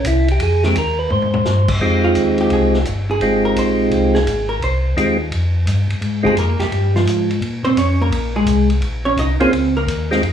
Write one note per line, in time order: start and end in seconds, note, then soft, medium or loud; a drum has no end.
0.05 0.40 C2 medium
0.05 0.29 E4 medium
0.05 hi-hat pedal medium
0.05 ride medium
0.28 0.42 G4 medium
0.28 ride soft
0.40 0.75 F2 medium
0.40 0.64 G#4 loud
0.40 ride medium
0.63 0.75 D#3 medium
0.63 0.75 G#3 medium
0.63 0.76 C4 medium
0.63 0.77 G4 medium
0.63 snare soft
0.76 1.10 D#2 medium
0.76 0.99 A#4 medium
0.76 hi-hat pedal medium
0.76 ride medium
0.99 1.11 B4 medium
1.10 1.45 G#2 medium
1.10 1.71 C5 medium
1.10 high tom soft
1.22 floor tom medium
1.34 mid tom medium
1.45 1.80 G2 loud
1.45 snare medium
1.45 hi-hat pedal medium
1.68 kick medium
1.68 crash medium
1.81 2.15 F2 medium
1.81 2.79 G#3 medium
1.81 2.79 C4 medium
1.81 2.79 D#4 medium
1.81 2.79 F4 medium
1.81 2.80 G4 medium
2.04 2.37 F4 medium
2.15 2.50 D#2 medium
2.15 hi-hat pedal medium
2.15 ride medium
2.38 2.52 G4 medium
2.38 ride soft
2.50 2.85 C2 medium
2.50 2.85 G#4 medium
2.50 ride medium
2.74 snare soft
2.85 3.20 G1 medium
2.85 hi-hat pedal medium
2.85 ride medium
3.11 3.43 G#4 medium
3.20 3.55 G#1 medium
3.20 4.20 G#3 medium
3.20 4.20 C4 medium
3.20 4.20 D#4 medium
3.20 4.20 F4 medium
3.20 4.20 G4 medium
3.20 ride medium
3.45 3.57 A#4 medium
3.55 3.90 A#1 medium
3.55 3.90 C5 medium
3.55 hi-hat pedal medium
3.55 ride medium
3.91 4.25 C2 medium
3.91 ride medium
4.15 4.47 G#4 medium
4.15 snare soft
4.26 4.60 G#1 medium
4.26 hi-hat pedal medium
4.26 ride medium
4.49 4.61 A#4 medium
4.60 4.95 C2 medium
4.60 4.95 C5 medium
4.60 ride medium
4.97 5.31 D#2 medium
4.97 5.18 G#3 medium
4.97 5.17 C4 medium
4.97 5.17 D#4 medium
4.97 5.18 F4 medium
4.97 5.18 G4 medium
4.97 hi-hat pedal medium
4.97 ride medium
5.32 5.66 F2 medium
5.32 ride medium
5.66 5.88 G2 medium
5.66 hi-hat pedal medium
5.66 ride medium
5.89 5.96 G2 soft
5.89 ride soft
6.01 6.36 G#2 medium
6.01 ride medium
6.23 6.35 G#3 medium
6.23 6.35 C4 medium
6.23 6.35 D#4 medium
6.23 6.35 F4 medium
6.23 6.36 G4 medium
6.23 6.38 G#4 medium
6.23 kick soft
6.27 6.38 G#3 medium
6.36 6.58 F2 medium
6.36 6.61 A#3 medium
6.36 6.60 A#4 medium
6.36 hi-hat pedal soft
6.36 ride medium
6.59 6.65 F2 soft
6.59 6.93 G3 medium
6.59 6.93 G4 medium
6.59 snare soft
6.59 ride soft
6.71 7.06 G2 medium
6.71 ride soft
6.96 7.28 F3 medium
6.96 7.28 F4 medium
6.96 snare soft
7.06 7.41 G#2 medium
7.06 hi-hat pedal medium
7.06 ride medium
7.31 ride soft
7.41 7.63 A#2 medium
7.41 ride medium
7.65 7.71 A#2 soft
7.65 7.77 C4 medium
7.65 7.77 C5 medium
7.65 ride soft
7.76 8.11 F2 medium
7.76 8.00 C#4 medium
7.76 8.00 C#5 medium
7.76 hi-hat pedal medium
7.76 ride medium
8.01 8.34 A#3 medium
8.01 8.34 A#4 medium
8.10 8.46 A#1 medium
8.10 ride medium
8.36 8.68 G#3 medium
8.36 8.68 G#4 medium
8.46 8.81 C2 medium
8.46 hi-hat pedal medium
8.46 ride medium
8.70 ride soft
8.81 9.16 A#1 medium
8.81 ride medium
9.05 9.18 C#4 medium
9.05 9.17 C#5 medium
9.17 9.38 C2 medium
9.17 9.41 D#4 medium
9.17 9.41 D#5 medium
9.17 hi-hat pedal medium
9.17 ride medium
9.39 9.46 C2 soft
9.39 9.52 A#3 medium
9.39 9.52 C4 medium
9.39 9.74 C4 medium
9.39 9.52 C#4 medium
9.39 9.52 F4 medium
9.39 9.52 G#4 medium
9.39 9.74 C5 medium
9.39 ride soft
9.52 9.87 C#2 medium
9.52 ride medium
9.77 10.09 A#3 medium
9.77 10.09 A#4 medium
9.87 10.22 D#2 medium
9.87 hi-hat pedal medium
9.87 ride medium
10.11 10.22 G#3 medium
10.11 10.22 C4 medium
10.11 10.22 D#4 medium
10.11 10.23 F4 medium
10.11 10.22 G4 medium
10.11 snare soft
10.23 10.33 F2 medium
10.23 ride medium